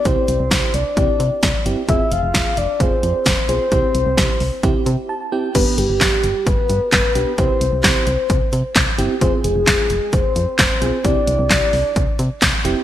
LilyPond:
<<
  \new Staff \with { instrumentName = "Soft synth lead" } { \time 4/4 \key c \major \tempo 4 = 131 c''4. d''2 r8 | e''8 f''4 d''8 c''4. c''8~ | c''2. r4 | b'8 g'4. b'4 b'4 |
c''4 c''4. r4. | c''8 aes'4. c''4 c''4 | d''4 d''4. r4. | }
  \new Staff \with { instrumentName = "FM electric piano" } { \time 4/4 \key c \major <c' e' g'>4. r8 <c' e' g'>4 r8 <c' e' g'>8 | <c' f' aes'>4. r8 <c' f' aes'>4 r8 <c' f' aes'>8 | <c' e' g'>4. r8 <c' e' g'>4 a''8 <c' e' g' g''>8 | <b d' g'>4. r2 <b d' g'>8 |
<c' e' g'>4. r2 <c' e' g'>8 | <c' f' aes'>4. r2 <c' f' aes'>8 | <c' e' g'>4. r2 <c' e' g'>8 | }
  \new Staff \with { instrumentName = "FM bass" } { \clef bass \time 4/4 \key c \major c,16 r16 c,16 c,16 c,16 r16 c,16 r16 c,16 r16 c16 r16 c,16 r16 g,,16 r16 | f,,16 r16 f,,16 f,,16 f,,16 r16 f,,16 r16 f,,16 r16 f,16 r16 f,,16 r16 b,,16 r16 | c,16 r16 c,16 c,16 c,16 r16 c,16 r16 c,16 r16 c16 r4 r16 | g,,16 r16 g,,16 g,,16 g,,16 r16 g,,16 r16 g,,16 r16 g,16 r16 g,,16 r16 b,,16 r16 |
c,16 r16 c,16 c,16 c,16 r16 c,16 r16 c,16 r16 c16 r16 c,16 r16 g,,16 r16 | f,,16 r16 f,,16 f,,16 f,,16 r16 f,,16 r16 f,,16 r16 f,16 r16 f,,16 r16 b,,16 r16 | c,16 r16 c,16 c,16 c,16 r16 c,16 r16 c,16 r16 c16 r16 c,16 r16 f,,16 r16 | }
  \new DrumStaff \with { instrumentName = "Drums" } \drummode { \time 4/4 <hh bd>8 hh8 <hh bd sn>8 hh8 <hh bd>8 hh8 <hh bd sn>8 hh8 | <hh bd>8 hh8 <hh bd sn>8 hh8 <hh bd>8 hh8 <hh bd sn>8 hh8 | <hh bd>8 hh8 <hh bd sn>8 hho8 <hh bd>8 hh8 r4 | <cymc hh bd>8 hh8 <hc hh bd sn>8 hh8 <hh bd>8 hh8 <hc hh bd sn>8 hh8 |
<hh bd>8 hh8 <hc hh bd sn>8 hh8 <hh bd>8 hh8 <hc hh bd sn>8 hh8 | <hh bd>8 hh8 <hc hh bd sn>8 hh8 <hh bd>8 hh8 <hc hh bd sn>8 hh8 | <hh bd>8 hh8 <hc hh bd sn>8 hho8 <hh bd>8 hh8 <hc hh bd sn>8 hh8 | }
>>